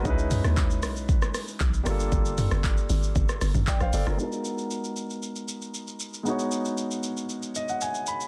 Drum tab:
HH |--o---o---o---o-|--o---o---o---o-|----------------|----------------|
SH |xxxxxxxxxxxxxxxx|xxxxxxxxxxxxxxxx|xxxxxxxxxxxxxxxx|xxxxxxxxxxxxxxxx|
CP |----x-------x---|----x-------x---|----------------|----------------|
SD |---r--r--rr---r-|---r-----rr--r-r|----------------|----------------|
T2 |--o-------------|--o--------o----|----------------|----------------|
BD |o---o---o---o---|o---o---o---o---|----------------|----------------|